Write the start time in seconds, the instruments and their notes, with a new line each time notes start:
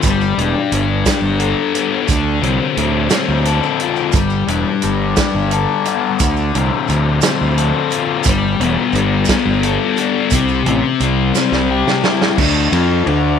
0.02 fingered electric bass G1, distorted electric guitar G3, kick, closed hi-hat, maracas
0.21 maracas
0.37 fingered electric bass E1, distorted electric guitar D4, closed hi-hat
0.72 fingered electric bass G1, distorted electric guitar G3, closed hi-hat, maracas
1.06 distorted electric guitar D4, kick, snare, closed hi-hat, maracas
1.22 fingered electric bass G1
1.39 distorted electric guitar A4, closed hi-hat
1.74 distorted electric guitar B3, closed hi-hat, maracas
2.08 fingered electric bass D2, distorted electric guitar D3, kick, closed hi-hat, maracas
2.42 fingered electric bass C2, distorted electric guitar C4, closed hi-hat
2.77 fingered electric bass D2, distorted electric guitar D3, closed hi-hat
3.10 distorted electric guitar C4, snare, closed hi-hat, maracas
3.28 fingered electric bass D2
3.45 distorted electric guitar A4, closed hi-hat, maracas
3.63 maracas
3.80 distorted electric guitar F4, closed hi-hat
3.96 maracas
4.12 fingered electric bass G1, distorted electric guitar G3, kick, closed hi-hat, maracas
4.30 maracas
4.47 fingered electric bass E1, distorted electric guitar D4, closed hi-hat
4.82 fingered electric bass G1, distorted electric guitar G3, closed hi-hat, maracas
5.17 distorted electric guitar D4, kick, snare, closed hi-hat, maracas
5.34 fingered electric bass G1
5.51 distorted electric guitar A4, closed hi-hat
5.85 distorted electric guitar B3, closed hi-hat, maracas
6.19 fingered electric bass D2, distorted electric guitar D3, kick, closed hi-hat, maracas
6.37 maracas
6.55 fingered electric bass C2, distorted electric guitar C4, closed hi-hat
6.88 fingered electric bass D2, distorted electric guitar D3, closed hi-hat, maracas
7.21 distorted electric guitar C4, snare, closed hi-hat, maracas
7.41 fingered electric bass D2
7.58 distorted electric guitar A4, closed hi-hat
7.90 distorted electric guitar F4, closed hi-hat, maracas
8.23 fingered electric bass G1, distorted electric guitar G3, kick, closed hi-hat, maracas
8.60 fingered electric bass E1, distorted electric guitar B3, closed hi-hat
8.93 fingered electric bass G1, distorted electric guitar G3, closed hi-hat, maracas
9.25 distorted electric guitar B3, kick, maracas
9.29 snare, closed hi-hat
9.45 fingered electric bass G1
9.63 distorted electric guitar A4, closed hi-hat
9.96 distorted electric guitar D4, closed hi-hat, maracas
10.30 fingered electric bass C2, distorted electric guitar C3, kick, closed hi-hat, maracas
10.48 maracas
10.66 fingered electric bass A1, distorted electric guitar C4, closed hi-hat
11.00 fingered electric bass C2, distorted electric guitar G3, closed hi-hat, maracas
11.35 distorted electric guitar C4, snare, maracas
11.52 fingered electric bass C2, snare
11.70 distorted electric guitar G4
11.88 snare
12.04 distorted electric guitar E4, snare
12.22 snare
12.38 fingered electric bass D2, distorted electric guitar D3 A3 D4, kick, crash
12.72 fingered electric bass F2, distorted electric guitar F3 C4 F4, ride
13.06 fingered electric bass D2, distorted electric guitar D3 A3 D4, ride